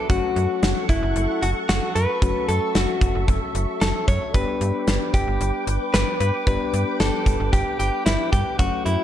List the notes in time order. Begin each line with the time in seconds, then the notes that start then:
0.10 F#1 F#3 A3 C#4 F#4 A4 F#5 C#6, kick, closed hi-hat
0.36 F#2, closed hi-hat
0.63 F#1, snare, closed hi-hat
0.89 F#1 E4, kick, closed hi-hat
1.03 F#1
1.16 F#1, closed hi-hat
1.42 F#1 F#4, closed hi-hat
1.69 F#1 F#4, snare, closed hi-hat
1.95 F#2 B4, closed hi-hat
2.22 F#1 F#3 A3 C#4 F#4 E5, kick, closed hi-hat
2.48 F#2 A4, closed hi-hat
2.75 F#1 F#4, snare, closed hi-hat
3.01 F#1, kick, closed hi-hat
3.15 F#1
3.28 F#1, kick, closed hi-hat
3.55 F#1, closed hi-hat
3.81 F#1 A4, snare, closed hi-hat
4.08 F#2 C#5, kick, closed hi-hat
4.34 G1 G3 B3 D4 G4 B4 G5 D6, kick, closed hi-hat
4.61 G2, closed hi-hat
4.87 G1, snare, closed hi-hat
5.14 G1 G4, kick, closed hi-hat
5.27 G1
5.41 G1, closed hi-hat
5.67 G1, closed hi-hat
5.94 G1 B4, snare, closed hi-hat
6.20 G2 B4, closed hi-hat
6.47 G1 G3 B3 D4 G4 B4, kick, closed hi-hat
6.74 G2, closed hi-hat
7.00 G1 A4, snare, closed hi-hat
7.26 G1, kick, closed hi-hat
7.40 G1
7.53 G1 G4, kick, closed hi-hat
7.79 G1 G4, closed hi-hat
8.06 G1 E4, snare, closed hi-hat
8.32 G2 G4, kick, closed hi-hat
8.59 F#1 F#3 A3 C#4 F#4 A4 F#5 C#6, kick, closed hi-hat
8.86 F#2 E4, closed hi-hat